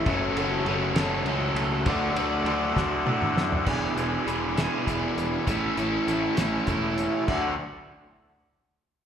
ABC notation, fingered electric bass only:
X:1
M:6/8
L:1/8
Q:3/8=66
K:Dlyd
V:1 name="Fingered electric bass" clef=bass
F,,, F,,, F,,, F,,, C,, C,, | D,, D,, D,, D,, A,, F,, | E,,, E,,, E,,,2 E,,, E,,, | A,,, A,,, A,,, A,,, E,,,2 |
D,, z4 z |]